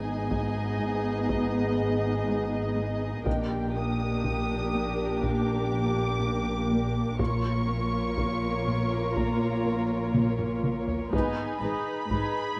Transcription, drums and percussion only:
0, 0, Header, 1, 2, 480
1, 0, Start_track
1, 0, Tempo, 983607
1, 1590, Time_signature, 4, 2, 24, 8
1, 6148, End_track
2, 0, Start_track
2, 0, Title_t, "Taiko and cinematic ensemble drums"
2, 150, Note_on_c, 9, 41, 59
2, 199, Note_off_c, 9, 41, 0
2, 630, Note_on_c, 9, 41, 66
2, 679, Note_off_c, 9, 41, 0
2, 1591, Note_on_c, 9, 41, 78
2, 1640, Note_off_c, 9, 41, 0
2, 2070, Note_on_c, 9, 41, 65
2, 2118, Note_off_c, 9, 41, 0
2, 2552, Note_on_c, 9, 41, 62
2, 2601, Note_off_c, 9, 41, 0
2, 3511, Note_on_c, 9, 41, 80
2, 3560, Note_off_c, 9, 41, 0
2, 3990, Note_on_c, 9, 41, 71
2, 4039, Note_off_c, 9, 41, 0
2, 4471, Note_on_c, 9, 41, 66
2, 4520, Note_off_c, 9, 41, 0
2, 4949, Note_on_c, 9, 47, 71
2, 4998, Note_off_c, 9, 47, 0
2, 5069, Note_on_c, 9, 45, 63
2, 5118, Note_off_c, 9, 45, 0
2, 5190, Note_on_c, 9, 47, 71
2, 5239, Note_off_c, 9, 47, 0
2, 5308, Note_on_c, 9, 43, 70
2, 5357, Note_off_c, 9, 43, 0
2, 5431, Note_on_c, 9, 41, 77
2, 5480, Note_off_c, 9, 41, 0
2, 5910, Note_on_c, 9, 41, 60
2, 5958, Note_off_c, 9, 41, 0
2, 6148, End_track
0, 0, End_of_file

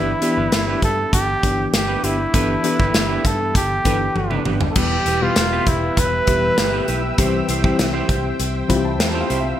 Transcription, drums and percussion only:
0, 0, Header, 1, 2, 480
1, 0, Start_track
1, 0, Tempo, 606061
1, 1851, Time_signature, 4, 2, 24, 8
1, 7602, End_track
2, 0, Start_track
2, 0, Title_t, "Drums"
2, 173, Note_on_c, 9, 42, 73
2, 252, Note_off_c, 9, 42, 0
2, 413, Note_on_c, 9, 42, 80
2, 415, Note_on_c, 9, 38, 98
2, 492, Note_off_c, 9, 42, 0
2, 494, Note_off_c, 9, 38, 0
2, 653, Note_on_c, 9, 36, 87
2, 654, Note_on_c, 9, 42, 71
2, 732, Note_off_c, 9, 36, 0
2, 733, Note_off_c, 9, 42, 0
2, 895, Note_on_c, 9, 36, 87
2, 898, Note_on_c, 9, 42, 82
2, 974, Note_off_c, 9, 36, 0
2, 978, Note_off_c, 9, 42, 0
2, 1135, Note_on_c, 9, 36, 84
2, 1135, Note_on_c, 9, 42, 75
2, 1214, Note_off_c, 9, 42, 0
2, 1215, Note_off_c, 9, 36, 0
2, 1375, Note_on_c, 9, 38, 103
2, 1375, Note_on_c, 9, 42, 78
2, 1454, Note_off_c, 9, 38, 0
2, 1454, Note_off_c, 9, 42, 0
2, 1614, Note_on_c, 9, 42, 57
2, 1693, Note_off_c, 9, 42, 0
2, 1852, Note_on_c, 9, 42, 82
2, 1854, Note_on_c, 9, 36, 99
2, 1931, Note_off_c, 9, 42, 0
2, 1933, Note_off_c, 9, 36, 0
2, 2090, Note_on_c, 9, 42, 75
2, 2170, Note_off_c, 9, 42, 0
2, 2214, Note_on_c, 9, 36, 84
2, 2293, Note_off_c, 9, 36, 0
2, 2330, Note_on_c, 9, 42, 71
2, 2333, Note_on_c, 9, 38, 101
2, 2410, Note_off_c, 9, 42, 0
2, 2412, Note_off_c, 9, 38, 0
2, 2572, Note_on_c, 9, 36, 86
2, 2573, Note_on_c, 9, 42, 72
2, 2651, Note_off_c, 9, 36, 0
2, 2652, Note_off_c, 9, 42, 0
2, 2812, Note_on_c, 9, 36, 88
2, 2813, Note_on_c, 9, 42, 83
2, 2891, Note_off_c, 9, 36, 0
2, 2893, Note_off_c, 9, 42, 0
2, 3050, Note_on_c, 9, 42, 72
2, 3052, Note_on_c, 9, 36, 78
2, 3129, Note_off_c, 9, 42, 0
2, 3131, Note_off_c, 9, 36, 0
2, 3292, Note_on_c, 9, 48, 50
2, 3371, Note_off_c, 9, 48, 0
2, 3411, Note_on_c, 9, 47, 48
2, 3491, Note_off_c, 9, 47, 0
2, 3528, Note_on_c, 9, 45, 76
2, 3607, Note_off_c, 9, 45, 0
2, 3648, Note_on_c, 9, 43, 76
2, 3727, Note_off_c, 9, 43, 0
2, 3766, Note_on_c, 9, 49, 85
2, 3770, Note_on_c, 9, 36, 100
2, 3845, Note_off_c, 9, 49, 0
2, 3849, Note_off_c, 9, 36, 0
2, 4007, Note_on_c, 9, 42, 76
2, 4086, Note_off_c, 9, 42, 0
2, 4244, Note_on_c, 9, 42, 79
2, 4247, Note_on_c, 9, 38, 100
2, 4323, Note_off_c, 9, 42, 0
2, 4326, Note_off_c, 9, 38, 0
2, 4487, Note_on_c, 9, 42, 73
2, 4489, Note_on_c, 9, 36, 88
2, 4566, Note_off_c, 9, 42, 0
2, 4568, Note_off_c, 9, 36, 0
2, 4729, Note_on_c, 9, 42, 85
2, 4730, Note_on_c, 9, 36, 88
2, 4808, Note_off_c, 9, 42, 0
2, 4809, Note_off_c, 9, 36, 0
2, 4967, Note_on_c, 9, 42, 75
2, 4971, Note_on_c, 9, 36, 85
2, 5046, Note_off_c, 9, 42, 0
2, 5050, Note_off_c, 9, 36, 0
2, 5209, Note_on_c, 9, 42, 82
2, 5210, Note_on_c, 9, 38, 109
2, 5288, Note_off_c, 9, 42, 0
2, 5289, Note_off_c, 9, 38, 0
2, 5448, Note_on_c, 9, 42, 60
2, 5528, Note_off_c, 9, 42, 0
2, 5688, Note_on_c, 9, 42, 84
2, 5690, Note_on_c, 9, 36, 102
2, 5767, Note_off_c, 9, 42, 0
2, 5769, Note_off_c, 9, 36, 0
2, 5929, Note_on_c, 9, 42, 77
2, 6008, Note_off_c, 9, 42, 0
2, 6051, Note_on_c, 9, 36, 81
2, 6130, Note_off_c, 9, 36, 0
2, 6170, Note_on_c, 9, 42, 79
2, 6173, Note_on_c, 9, 38, 97
2, 6249, Note_off_c, 9, 42, 0
2, 6252, Note_off_c, 9, 38, 0
2, 6407, Note_on_c, 9, 42, 72
2, 6408, Note_on_c, 9, 36, 86
2, 6487, Note_off_c, 9, 36, 0
2, 6487, Note_off_c, 9, 42, 0
2, 6649, Note_on_c, 9, 42, 84
2, 6728, Note_off_c, 9, 42, 0
2, 6888, Note_on_c, 9, 42, 80
2, 6889, Note_on_c, 9, 36, 80
2, 6967, Note_off_c, 9, 42, 0
2, 6968, Note_off_c, 9, 36, 0
2, 7128, Note_on_c, 9, 38, 107
2, 7128, Note_on_c, 9, 42, 79
2, 7207, Note_off_c, 9, 38, 0
2, 7207, Note_off_c, 9, 42, 0
2, 7367, Note_on_c, 9, 42, 60
2, 7446, Note_off_c, 9, 42, 0
2, 7602, End_track
0, 0, End_of_file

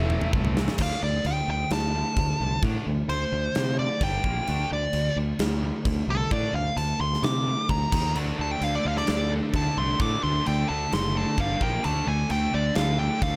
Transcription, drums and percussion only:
0, 0, Header, 1, 2, 480
1, 0, Start_track
1, 0, Key_signature, -1, "minor"
1, 0, Tempo, 460476
1, 828, Time_signature, 4, 2, 24, 8
1, 13926, End_track
2, 0, Start_track
2, 0, Title_t, "Drums"
2, 104, Note_on_c, 9, 45, 93
2, 208, Note_off_c, 9, 45, 0
2, 223, Note_on_c, 9, 45, 93
2, 328, Note_off_c, 9, 45, 0
2, 347, Note_on_c, 9, 36, 108
2, 451, Note_off_c, 9, 36, 0
2, 465, Note_on_c, 9, 43, 88
2, 569, Note_off_c, 9, 43, 0
2, 594, Note_on_c, 9, 38, 105
2, 698, Note_off_c, 9, 38, 0
2, 708, Note_on_c, 9, 38, 101
2, 812, Note_off_c, 9, 38, 0
2, 813, Note_on_c, 9, 49, 105
2, 813, Note_on_c, 9, 57, 56
2, 821, Note_on_c, 9, 36, 103
2, 917, Note_off_c, 9, 49, 0
2, 917, Note_off_c, 9, 57, 0
2, 925, Note_off_c, 9, 36, 0
2, 1298, Note_on_c, 9, 57, 60
2, 1402, Note_off_c, 9, 57, 0
2, 1777, Note_on_c, 9, 57, 64
2, 1788, Note_on_c, 9, 38, 117
2, 1881, Note_off_c, 9, 57, 0
2, 1892, Note_off_c, 9, 38, 0
2, 2259, Note_on_c, 9, 36, 89
2, 2263, Note_on_c, 9, 57, 59
2, 2363, Note_off_c, 9, 36, 0
2, 2367, Note_off_c, 9, 57, 0
2, 2738, Note_on_c, 9, 36, 99
2, 2739, Note_on_c, 9, 57, 52
2, 2842, Note_off_c, 9, 36, 0
2, 2843, Note_off_c, 9, 57, 0
2, 3227, Note_on_c, 9, 57, 49
2, 3331, Note_off_c, 9, 57, 0
2, 3699, Note_on_c, 9, 57, 59
2, 3710, Note_on_c, 9, 38, 115
2, 3804, Note_off_c, 9, 57, 0
2, 3814, Note_off_c, 9, 38, 0
2, 4179, Note_on_c, 9, 57, 59
2, 4180, Note_on_c, 9, 36, 93
2, 4284, Note_off_c, 9, 36, 0
2, 4284, Note_off_c, 9, 57, 0
2, 4419, Note_on_c, 9, 36, 93
2, 4524, Note_off_c, 9, 36, 0
2, 4664, Note_on_c, 9, 57, 59
2, 4768, Note_off_c, 9, 57, 0
2, 5139, Note_on_c, 9, 57, 58
2, 5243, Note_off_c, 9, 57, 0
2, 5619, Note_on_c, 9, 57, 64
2, 5630, Note_on_c, 9, 38, 118
2, 5724, Note_off_c, 9, 57, 0
2, 5734, Note_off_c, 9, 38, 0
2, 6101, Note_on_c, 9, 36, 84
2, 6104, Note_on_c, 9, 57, 65
2, 6205, Note_off_c, 9, 36, 0
2, 6208, Note_off_c, 9, 57, 0
2, 6580, Note_on_c, 9, 36, 103
2, 6580, Note_on_c, 9, 57, 56
2, 6684, Note_off_c, 9, 36, 0
2, 6684, Note_off_c, 9, 57, 0
2, 7061, Note_on_c, 9, 57, 56
2, 7165, Note_off_c, 9, 57, 0
2, 7437, Note_on_c, 9, 38, 31
2, 7541, Note_on_c, 9, 57, 55
2, 7542, Note_off_c, 9, 38, 0
2, 7552, Note_on_c, 9, 38, 110
2, 7646, Note_off_c, 9, 57, 0
2, 7656, Note_off_c, 9, 38, 0
2, 8018, Note_on_c, 9, 57, 62
2, 8019, Note_on_c, 9, 36, 87
2, 8122, Note_off_c, 9, 57, 0
2, 8123, Note_off_c, 9, 36, 0
2, 8260, Note_on_c, 9, 36, 107
2, 8265, Note_on_c, 9, 57, 89
2, 8364, Note_off_c, 9, 36, 0
2, 8369, Note_off_c, 9, 57, 0
2, 8501, Note_on_c, 9, 57, 55
2, 8605, Note_off_c, 9, 57, 0
2, 8981, Note_on_c, 9, 57, 55
2, 9085, Note_off_c, 9, 57, 0
2, 9347, Note_on_c, 9, 38, 32
2, 9451, Note_off_c, 9, 38, 0
2, 9455, Note_on_c, 9, 57, 66
2, 9466, Note_on_c, 9, 38, 111
2, 9559, Note_off_c, 9, 57, 0
2, 9570, Note_off_c, 9, 38, 0
2, 9938, Note_on_c, 9, 57, 67
2, 9941, Note_on_c, 9, 36, 91
2, 10042, Note_off_c, 9, 57, 0
2, 10045, Note_off_c, 9, 36, 0
2, 10419, Note_on_c, 9, 57, 62
2, 10422, Note_on_c, 9, 36, 109
2, 10523, Note_off_c, 9, 57, 0
2, 10526, Note_off_c, 9, 36, 0
2, 10907, Note_on_c, 9, 57, 56
2, 11011, Note_off_c, 9, 57, 0
2, 11387, Note_on_c, 9, 57, 56
2, 11398, Note_on_c, 9, 38, 114
2, 11492, Note_off_c, 9, 57, 0
2, 11502, Note_off_c, 9, 38, 0
2, 11860, Note_on_c, 9, 57, 57
2, 11862, Note_on_c, 9, 36, 94
2, 11965, Note_off_c, 9, 57, 0
2, 11966, Note_off_c, 9, 36, 0
2, 12102, Note_on_c, 9, 36, 101
2, 12206, Note_off_c, 9, 36, 0
2, 12342, Note_on_c, 9, 57, 53
2, 12446, Note_off_c, 9, 57, 0
2, 12818, Note_on_c, 9, 57, 56
2, 12922, Note_off_c, 9, 57, 0
2, 13293, Note_on_c, 9, 57, 64
2, 13304, Note_on_c, 9, 38, 110
2, 13398, Note_off_c, 9, 57, 0
2, 13408, Note_off_c, 9, 38, 0
2, 13780, Note_on_c, 9, 36, 93
2, 13781, Note_on_c, 9, 57, 65
2, 13884, Note_off_c, 9, 36, 0
2, 13885, Note_off_c, 9, 57, 0
2, 13926, End_track
0, 0, End_of_file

